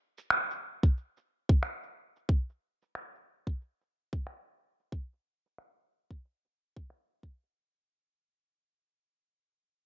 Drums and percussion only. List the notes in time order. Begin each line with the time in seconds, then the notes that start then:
0.18 shaker
0.30 finger snap, shaker
0.51 shaker
0.83 kick, shaker
0.97 shaker
1.17 shaker
1.49 kick
1.63 finger snap, shaker
1.83 shaker
2.16 shaker
2.29 kick
2.49 shaker
2.82 shaker
2.95 finger snap, shaker
3.15 shaker
3.47 kick
3.62 shaker
3.81 shaker
4.13 kick
4.27 finger snap
4.47 shaker
4.80 shaker
4.92 kick
5.13 shaker
5.46 shaker
5.58 finger snap, shaker
5.79 shaker
6.11 kick
6.25 shaker
6.45 shaker
6.76 kick
6.90 finger snap
7.10 shaker
7.23 kick
7.43 shaker